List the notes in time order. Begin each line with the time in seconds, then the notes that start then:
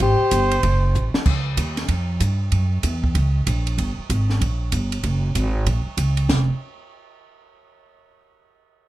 0.00 G#1 G4 C5, kick
0.21 muted upright bass stroke
0.31 G1, kick, hi-hat pedal, ride
0.51 ride
0.63 F#1, kick, ride
0.95 A1, hi-hat pedal
1.14 muted upright bass stroke, snare
1.26 C#2, kick, crash
1.57 D#2, kick, hi-hat pedal, ride
1.77 snare, ride
1.88 F2, kick, ride
2.20 G2, kick, hi-hat pedal, ride
2.52 F#2, kick, ride
2.83 E2, kick, hi-hat pedal, ride
3.04 kick
3.15 C#2, kick, ride
3.47 A#1, kick, hi-hat pedal, ride
3.67 ride
3.78 G1, kick, ride
3.98 muted upright bass stroke
4.10 G#1, kick, hi-hat pedal, ride
4.30 snare
4.41 A#1, kick, ride
4.72 G1, kick, hi-hat pedal, ride
4.92 ride
5.04 F#1, kick, ride
5.35 G#1, kick, hi-hat pedal, ride
5.66 A#1, kick, ride
5.86 muted upright bass stroke
5.97 C#2, kick, hi-hat pedal, ride
6.17 ride
6.29 F1, snare, splash